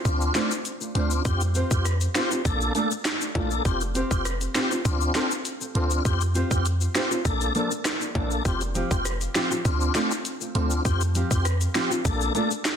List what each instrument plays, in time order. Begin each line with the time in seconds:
0.05 808-style bass D2, tonewheel organ C4 D4 F4, kick, closed hi-hat, shaker
0.21 shaker
0.34 nylon-string guitar A3 D4 F4 C5, tonewheel organ C4 D4 F4, finger snap, snare, closed hi-hat, shaker
0.51 shaker
0.65 closed hi-hat, shaker
0.81 muted nylon-string guitar stroke, shaker
0.95 808-style bass D2, nylon-string guitar A3 D4 F4 C5, tonewheel organ C4 D4 F4, closed hi-hat
1.11 shaker
1.25 808-style bass F2, tonewheel organ C4 F4 G4, kick, closed hi-hat, shaker
1.41 closed hi-hat, shaker
1.55 nylon-string guitar C4 F4 G4 C5, closed hi-hat, shaker
1.71 808-style bass F2, tonewheel organ C4 F4 G4, kick, shaker
1.85 cross-stick, closed hi-hat, shaker
2.01 closed hi-hat, shaker
2.15 nylon-string guitar C4 F4 G4 C5, tonewheel organ C4 F4 G4, finger snap, snare, closed hi-hat, shaker
2.31 nylon-string guitar C4 F4 G4 C5, shaker
2.45 808-style bass A#1, tonewheel organ A#3 D4 A4, kick, closed hi-hat, shaker
2.61 shaker
2.75 nylon-string guitar A3 D4 F4 A4, tonewheel organ A#3 D4 A4, closed hi-hat, shaker
2.91 muted nylon-string guitar stroke, shaker
3.05 finger snap, snare, closed hi-hat, shaker
3.21 shaker
3.35 808-style bass A#1, nylon-string guitar A3 D4 F4 A4, tonewheel organ A#3 D4 A4, kick, closed hi-hat, high timbale
3.51 shaker
3.65 808-style bass F1, tonewheel organ C4 F4 G4, kick, closed hi-hat, shaker
3.81 closed hi-hat, shaker
3.95 nylon-string guitar C4 F4 G4 C5, closed hi-hat, shaker
4.11 808-style bass F1, tonewheel organ C4 F4 G4, kick, shaker
4.25 cross-stick, closed hi-hat, shaker
4.41 closed hi-hat, shaker
4.55 nylon-string guitar C4 F4 G4 C5, tonewheel organ C4 F4 G4, finger snap, snare, closed hi-hat, shaker
4.71 nylon-string guitar C4 F4 G4 C5, shaker
4.85 808-style bass D2, tonewheel organ C4 D4 F4, kick, closed hi-hat, shaker
5.01 shaker
5.14 nylon-string guitar C4 F4 A4 C5, tonewheel organ C4 D4 F4, finger snap, snare, closed hi-hat, shaker
5.31 shaker
5.45 closed hi-hat, shaker
5.61 muted nylon-string guitar stroke, shaker
5.75 808-style bass D2, nylon-string guitar C4 F4 A4 C5, tonewheel organ C4 D4 F4, closed hi-hat
5.91 shaker
6.05 808-style bass F2, tonewheel organ C4 F4 G4, kick, closed hi-hat, shaker
6.21 closed hi-hat, shaker
6.35 nylon-string guitar C4 F4 G4 C5, closed hi-hat, shaker
6.51 808-style bass F2, tonewheel organ C4 F4 G4, kick, shaker
6.65 closed hi-hat, shaker
6.81 shaker
6.95 nylon-string guitar C4 F4 G4 C5, tonewheel organ C4 F4 G4, finger snap, snare, closed hi-hat, shaker
7.11 nylon-string guitar C4 F4 G4 C5, shaker
7.25 808-style bass A#1, tonewheel organ A#3 D4 A4, kick, closed hi-hat, shaker
7.41 closed hi-hat, shaker
7.55 nylon-string guitar F3 A#3 D4 A4, tonewheel organ A#3 D4 A4, closed hi-hat, shaker
7.71 muted nylon-string guitar stroke, shaker
7.85 finger snap, cross-stick, snare, closed hi-hat, shaker
8.01 shaker
8.15 808-style bass A#1, nylon-string guitar F3 A#3 D4 A4, tonewheel organ A#3 D4 A4, kick, closed hi-hat, high timbale
8.31 shaker
8.45 808-style bass F1, tonewheel organ C4 F4 G4, kick, closed hi-hat, shaker
8.61 closed hi-hat, shaker
8.75 nylon-string guitar F3 C4 F4 G4, closed hi-hat, shaker
8.91 808-style bass F1, tonewheel organ C4 F4 G4, kick, shaker
9.05 cross-stick, closed hi-hat, shaker
9.21 closed hi-hat, shaker
9.35 nylon-string guitar F3 C4 F4 G4, tonewheel organ C4 F4 G4, finger snap, snare, closed hi-hat, shaker
9.50 nylon-string guitar F3 C4 F4 G4, shaker
9.65 808-style bass D2, tonewheel organ C4 D4 F4, kick, closed hi-hat, shaker
9.81 shaker
9.94 nylon-string guitar A3 C4 F4 A4, tonewheel organ C4 D4 F4, finger snap, snare, closed hi-hat, shaker
10.11 shaker
10.25 closed hi-hat, shaker
10.41 muted nylon-string guitar stroke, shaker
10.54 808-style bass D2, nylon-string guitar A3 C4 F4 A4, tonewheel organ C4 D4 F4, closed hi-hat
10.71 shaker
10.85 808-style bass F2, tonewheel organ C4 F4 G4, kick, closed hi-hat, shaker
11.01 closed hi-hat, shaker
11.15 nylon-string guitar F3 C4 F4 G4, closed hi-hat, shaker
11.31 808-style bass F2, tonewheel organ C4 F4 G4, kick, shaker
11.45 cross-stick, closed hi-hat, shaker
11.61 closed hi-hat, shaker
11.74 nylon-string guitar F3 C4 F4 G4, tonewheel organ C4 F4 G4, finger snap, snare, closed hi-hat, shaker
11.90 nylon-string guitar F3 C4 F4 G4, shaker
12.05 808-style bass A#1, tonewheel organ A#3 D4 A4, kick, closed hi-hat, shaker
12.21 shaker
12.35 nylon-string guitar A3 D4 F4 A4, tonewheel organ A#3 D4 A4, closed hi-hat, shaker
12.51 muted nylon-string guitar stroke, shaker
12.65 finger snap, snare, closed hi-hat, shaker